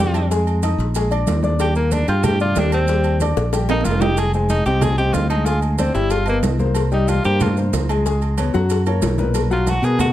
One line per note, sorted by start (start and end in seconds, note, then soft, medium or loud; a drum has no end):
0.00 0.74 F2 medium
0.00 0.25 G3 medium
0.00 0.25 G4 medium
0.00 0.28 G4 loud
0.00 0.25 G5 medium
0.14 cowbell medium
0.14 high conga soft
0.14 low agogo loud
0.14 maracas soft
0.30 0.57 G#3 medium
0.30 0.57 G#4 medium
0.30 0.58 G#5 medium
0.30 cowbell loud
0.30 high conga soft
0.30 maracas medium
0.47 high conga soft
0.47 low agogo medium
0.47 maracas soft
0.63 0.90 D#4 medium
0.63 0.89 D#5 medium
0.63 0.90 D#6 medium
0.63 cowbell medium
0.63 high conga medium
0.63 low timbale medium
0.63 low agogo loud
0.63 maracas medium
0.78 1.24 A#1 medium
0.78 cowbell medium
0.78 high conga soft
0.78 maracas soft
0.95 1.09 G#3 medium
0.95 1.09 G#4 medium
0.95 1.09 G#5 medium
0.95 cowbell loud
0.95 high conga soft
0.95 low agogo medium
0.95 maracas medium
1.11 1.38 D4 medium
1.11 1.38 D5 medium
1.11 1.38 D6 medium
1.11 high conga soft
1.11 low agogo loud
1.11 maracas soft
1.27 2.02 D#2 medium
1.27 cowbell medium
1.27 high conga medium
1.27 low timbale medium
1.27 low agogo medium
1.27 maracas medium
1.43 1.70 D4 medium
1.43 1.70 D5 medium
1.43 1.70 D6 medium
1.43 high conga medium
1.43 maracas soft
1.59 1.75 G4 medium
1.59 cowbell loud
1.59 high conga soft
1.59 low agogo loud
1.59 maracas medium
1.75 2.02 A#3 medium
1.75 1.94 A#3 medium
1.75 2.02 A#4 medium
1.75 2.02 A#5 medium
1.75 high conga soft
1.75 maracas soft
1.91 2.08 D4 medium
1.91 cowbell medium
1.91 high conga medium
1.91 low timbale medium
1.91 low agogo medium
1.91 maracas medium
2.08 2.53 G2 medium
2.08 2.26 F4 loud
2.08 2.34 G4 medium
2.08 2.35 G5 medium
2.08 2.35 G6 medium
2.08 cowbell medium
2.08 low agogo medium
2.08 maracas soft
2.24 2.40 G4 loud
2.24 cowbell loud
2.24 high conga soft
2.24 low conga medium
2.24 low agogo loud
2.24 maracas medium
2.40 2.54 D4 medium
2.40 2.60 F4 loud
2.40 2.54 D5 medium
2.40 2.54 D6 medium
2.40 high conga soft
2.40 maracas soft
2.56 3.31 D#2 medium
2.56 2.83 G3 medium
2.56 2.73 D4 medium
2.56 2.83 G4 medium
2.56 2.83 G5 medium
2.56 cowbell medium
2.56 high conga medium
2.56 low timbale medium
2.56 low agogo medium
2.56 maracas medium
2.72 3.18 C4 loud
2.72 cowbell medium
2.72 high conga soft
2.72 low agogo loud
2.72 maracas soft
2.88 3.15 G3 medium
2.88 3.15 G4 medium
2.88 3.15 G5 medium
2.88 cowbell loud
2.88 high conga soft
2.88 maracas medium
3.04 high conga soft
3.04 low agogo medium
3.04 maracas soft
3.20 3.48 D4 medium
3.20 3.48 D5 medium
3.20 3.48 D6 medium
3.20 cowbell medium
3.20 high conga medium
3.20 low timbale medium
3.20 low agogo loud
3.20 maracas medium
3.37 3.82 A#1 loud
3.37 cowbell medium
3.37 high bongo loud
3.37 high conga soft
3.37 maracas soft
3.53 3.66 G3 medium
3.53 3.67 G4 medium
3.53 3.67 G5 medium
3.53 cowbell loud
3.53 high bongo medium
3.53 high conga soft
3.53 low agogo medium
3.53 maracas medium
3.69 3.96 A#3 medium
3.69 3.87 D#4 loud
3.69 3.96 A#4 medium
3.69 3.96 A#5 medium
3.69 high bongo medium
3.69 high conga soft
3.69 high timbale medium
3.69 low agogo loud
3.69 maracas soft
3.81 high conga medium
3.81 high timbale medium
3.85 4.61 F1 loud
3.85 4.02 F4 loud
3.85 cowbell medium
3.85 low agogo medium
3.85 maracas medium
3.91 low timbale medium
4.01 4.15 D#4 medium
4.01 4.20 G4 loud
4.01 4.15 D#5 medium
4.01 4.15 D#6 medium
4.01 low bongo loud
4.01 high conga medium
4.01 low timbale loud
4.01 maracas soft
4.17 4.34 G#4 loud
4.17 cowbell loud
4.17 high conga soft
4.17 low agogo loud
4.17 maracas medium
4.33 4.61 G#3 medium
4.33 4.51 C4 soft
4.33 4.61 G#4 medium
4.33 4.61 G#5 medium
4.33 high conga soft
4.33 maracas soft
4.49 4.65 D#4 medium
4.49 cowbell medium
4.49 high conga medium
4.49 low timbale medium
4.49 low agogo medium
4.49 maracas medium
4.66 5.11 C2 medium
4.66 4.93 C4 medium
4.66 4.84 G4 loud
4.66 4.93 C5 medium
4.66 4.93 D#5 medium
4.66 cowbell medium
4.66 low agogo medium
4.66 maracas soft
4.81 4.97 G#4 loud
4.81 cowbell loud
4.81 high conga soft
4.81 low conga medium
4.81 low agogo loud
4.81 maracas medium
4.97 5.25 C4 medium
4.97 5.15 G4 loud
4.97 5.25 C5 medium
4.97 5.25 D#5 medium
4.97 high conga soft
4.97 maracas soft
5.13 5.90 D2 medium
5.13 5.29 F4 medium
5.13 cowbell medium
5.13 high conga medium
5.13 low timbale medium
5.13 low agogo medium
5.13 maracas medium
5.29 5.44 G#3 medium
5.29 5.47 D#4 medium
5.29 5.44 G#4 medium
5.29 5.45 G#5 medium
5.29 cowbell medium
5.29 high conga soft
5.29 low agogo loud
5.29 maracas soft
5.45 5.73 G#3 medium
5.45 5.61 F4 medium
5.45 5.73 G#4 medium
5.45 5.74 G#5 medium
5.45 cowbell loud
5.45 high conga soft
5.45 maracas medium
5.61 5.77 G#3 soft
5.61 high conga soft
5.61 low agogo medium
5.61 maracas soft
5.78 5.94 C4 medium
5.78 5.92 C4 medium
5.78 5.92 C5 medium
5.78 5.93 D5 medium
5.78 cowbell medium
5.78 high conga medium
5.78 low timbale medium
5.78 low agogo loud
5.78 maracas medium
5.94 6.40 G1 medium
5.94 6.21 G3 medium
5.94 6.13 E4 loud
5.94 6.21 G4 medium
5.94 6.22 G5 medium
5.94 cowbell medium
5.94 high conga soft
5.94 maracas soft
6.10 6.27 F4 loud
6.10 cowbell loud
6.10 high conga soft
6.10 low agogo medium
6.10 maracas medium
6.26 6.38 A#3 medium
6.26 6.53 B3 medium
6.26 6.54 B4 medium
6.26 6.54 D#5 medium
6.26 high conga soft
6.26 low agogo loud
6.26 maracas soft
6.43 7.19 C2 medium
6.43 cowbell medium
6.43 high conga medium
6.43 low timbale medium
6.43 low agogo medium
6.43 maracas medium
6.59 6.86 A#3 medium
6.59 6.86 A#4 medium
6.59 6.86 C5 medium
6.59 high conga medium
6.59 maracas soft
6.75 cowbell loud
6.75 high conga soft
6.75 low agogo loud
6.75 maracas medium
6.92 7.18 G3 medium
6.92 7.10 D#4 medium
6.92 7.18 G4 medium
6.92 7.19 G5 medium
6.92 high conga soft
6.92 maracas soft
7.08 7.25 F4 loud
7.08 cowbell medium
7.08 high conga medium
7.08 low timbale medium
7.08 low agogo medium
7.08 maracas medium
7.24 7.70 G2 medium
7.24 7.51 A#3 medium
7.24 7.44 G4 loud
7.24 7.51 A#4 medium
7.24 7.51 C5 medium
7.24 cowbell medium
7.24 low agogo medium
7.24 maracas soft
7.40 7.58 F4 loud
7.40 cowbell loud
7.40 high conga soft
7.40 low conga medium
7.40 low agogo loud
7.40 maracas medium
7.57 7.84 A#3 medium
7.57 7.84 A#4 medium
7.57 7.84 C5 medium
7.57 high conga soft
7.57 maracas soft
7.73 8.48 C#2 medium
7.73 cowbell medium
7.73 high conga medium
7.73 low timbale medium
7.73 low agogo medium
7.73 maracas medium
7.89 8.03 G#3 medium
7.89 8.03 G#4 medium
7.89 8.03 G#5 medium
7.89 cowbell medium
7.89 high conga soft
7.89 low agogo loud
7.89 maracas soft
8.06 8.32 G#3 medium
8.06 8.32 G#4 medium
8.06 8.33 G#5 medium
8.06 cowbell loud
8.06 high conga soft
8.06 maracas medium
8.22 high conga soft
8.22 low agogo medium
8.22 maracas soft
8.38 8.51 B3 medium
8.38 8.52 B4 medium
8.38 8.52 C#5 medium
8.38 cowbell medium
8.38 high conga medium
8.38 low timbale medium
8.38 low agogo loud
8.38 maracas medium
8.54 9.00 F#2 medium
8.54 8.80 F#3 medium
8.54 8.80 F#4 medium
8.54 8.81 F#5 medium
8.54 cowbell medium
8.54 high bongo medium
8.54 high conga soft
8.54 maracas soft
8.70 cowbell loud
8.70 high conga soft
8.70 low agogo medium
8.70 maracas medium
8.86 9.13 A#3 medium
8.86 9.13 A#4 medium
8.86 9.13 C#5 medium
8.86 low bongo medium
8.86 high conga soft
8.86 low agogo loud
8.86 maracas soft
9.02 9.78 B1 medium
9.02 cowbell medium
9.02 low bongo medium
9.02 high conga medium
9.02 low timbale medium
9.02 low agogo medium
9.02 maracas medium
9.18 9.45 A#2 medium
9.18 9.45 A#4 medium
9.18 9.46 B4 medium
9.18 low bongo medium
9.18 high conga medium
9.18 maracas soft
9.34 cowbell loud
9.34 high conga soft
9.34 low agogo loud
9.34 maracas medium
9.50 9.77 F#3 medium
9.50 9.71 F4 medium
9.50 9.78 F#4 medium
9.50 9.78 F#5 medium
9.50 high conga soft
9.50 maracas soft
9.67 9.86 F#4 loud
9.67 cowbell medium
9.67 high conga medium
9.67 low timbale medium
9.67 low agogo loud
9.67 maracas medium
9.82 10.13 B2 medium
9.82 10.10 B3 medium
9.82 10.00 G#4 loud
9.82 10.10 A#4 medium
9.82 10.11 B4 medium
9.82 cowbell medium
9.82 low agogo medium
9.82 maracas soft
9.99 10.10 F#4 medium
9.99 cowbell loud
9.99 high conga soft
9.99 low conga medium
9.99 low agogo loud
9.99 maracas medium